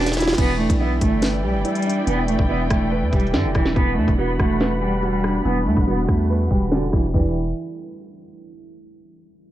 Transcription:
Already playing: E1 D3 E3 G3 B3 D4 F#4 G4 B4
0.01 snare
0.06 snare, closed hi-hat
0.12 snare, closed hi-hat
0.17 D4 E4, snare, closed hi-hat
0.22 snare
0.27 snare
0.33 snare
0.38 E1 E3 B3 E4 D5 G5, kick, closed hi-hat, crash
0.59 A3 D4
0.70 B1, kick, closed hi-hat
0.80 B3 E4
1.01 G1 A3, kick, closed hi-hat
1.22 B4, snare, closed hi-hat
1.44 B1 G3 G4
1.54 G1
1.65 G3 E4, closed hi-hat
1.75 closed hi-hat
1.82 D4, closed hi-hat
1.89 closed hi-hat
2.07 E1 E3 B3, closed hi-hat
2.28 A3 D4, closed hi-hat
2.39 E1, kick
2.49 E1 B3 E4
2.70 E1 A3, kick, cross-stick, closed hi-hat
2.91 B4
3.02 E2
3.13 E1 G3 G4, kick, closed hi-hat
3.20 closed hi-hat
3.27 closed hi-hat
3.34 G2 D3 E4, snare, closed hi-hat
3.44 E1
3.55 E1 E3 D4, kick, cross-stick, closed hi-hat
3.65 snare
3.76 E1 E3 G3 B3 F#5 B5, kick, closed hi-hat
3.97 E2 A3 D4
4.08 E1, kick, closed hi-hat
4.18 B3 F#4
4.39 E1 A3, kick, cross-stick, closed hi-hat
4.60 B4, snare, closed hi-hat
4.82 G3 G4
5.03 G3 F#4, closed hi-hat
5.13 closed hi-hat
5.21 D4, cross-stick, closed hi-hat
5.28 closed hi-hat
5.45 E1 E3 B3, closed hi-hat
5.66 E2 A3 D4, closed hi-hat
5.77 E1, kick
5.87 E1 B3 F#4
6.08 E2 A3, kick, cross-stick, closed hi-hat
6.30 B4
6.51 E1 G3 G4, kick, closed hi-hat
6.61 closed hi-hat
6.72 D3 F#4, snare, closed hi-hat
6.93 E1 E3 D4, kick, cross-stick, open hi-hat
7.14 E1 E3 D4 E4 G4 B4 D5 G5, kick, floor tom, open hi-hat

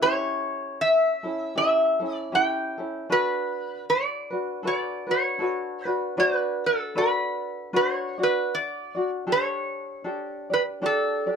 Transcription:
0.01 C#4 E4 G4 A4 C#5
0.81 E5
1.23 C#4 E4 A4
1.55 C#4 E4 G4 A4 E5
2.00 C#4 E4 A4
2.15 D5
2.32 C#4 E4 G4 A4 G5
2.78 C#4 E4 A4
3.09 D4 F#4 A4 B4
3.90 D5
4.30 D4 F#4 B4
4.63 D4 F#4 A4 B4
4.67 D5
5.07 D4 F#4 B4
5.11 C#5
5.39 D4 F#4 A4 B4
5.44 C#5
5.85 D4 F#4 B4
6.17 D4 F#4 B4 C5 D5
6.38 B4
6.66 A4
6.95 D4 F#4 B4 D5
7.73 D4 F#4 B4 C5
7.93 C#5
8.18 D4 F#4 D5
8.23 B4
8.55 D5
8.95 D4 F#4 D5
9.27 D4 G4 A4
9.32 C#5
10.04 D4 G4 A4
10.50 D4 G4 B4 D5
10.82 D4 G4 A4 D5
10.86 A4
11.26 D4 G4 D5

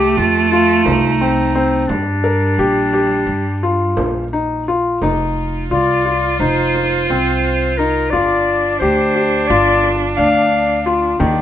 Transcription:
Already playing: C2 A3 G4
0.10 G4
0.17 F2 F4
0.50 F4
0.84 C2 D#4, frame drum
1.21 C4
1.55 C4
1.87 G2 G3 D4, frame drum
2.24 A#4
2.58 A#1 G4
2.93 G4, frame drum
3.27 G2
3.63 F4
3.97 A#1, frame drum
4.33 D#4
4.66 F4, frame drum
5.01 F1 D#4 F4, frame drum
5.71 C2 F4 D5
6.06 F4
6.40 F1 D#4 C5
6.75 frame drum
7.09 C2 C4 C5
7.77 D#4 A#4
8.10 G1 D4 F4 D5, frame drum
8.79 D2 G4 C5
9.16 G4
9.48 G1 F4 D5
9.84 frame drum
10.17 D2 D4 F5
10.86 F4
11.19 D#2 D#3 D4, frame drum

